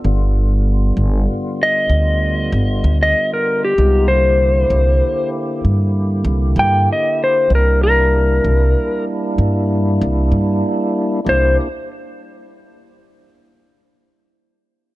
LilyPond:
<<
  \new Staff \with { instrumentName = "Electric slide guitar" } { \time 12/8 \key c \mixolydian \tempo 4. = 64 r2 r8 ees''2~ ees''16 ees''8 bes'8 g'16~ | g'8 c''2 r2 g''8 ees''8 c''8 | bes'8 bes'2 r2. r8 | c''8 r1 r4. | }
  \new Staff \with { instrumentName = "Tonewheel organ" } { \time 12/8 \key c \mixolydian <d g b f'>1. | <aes b ees' f'>8 <d bes e' g'>1~ <d bes e' g'>4. | <g bes d' e'>1. | <bes d' e' g'>8 r1 r4. | }
  \new Staff \with { instrumentName = "Upright bass" } { \clef bass \time 12/8 \key c \mixolydian g,,4. g,,8 r4 d,4 g,,8 d,8 r4 | c,4. c,8 r4 g,4 c,8 g,8 r4 | c,4. c,8 r4 g,4 c,8 g,8 r4 | c,8 r1 r4. | }
>>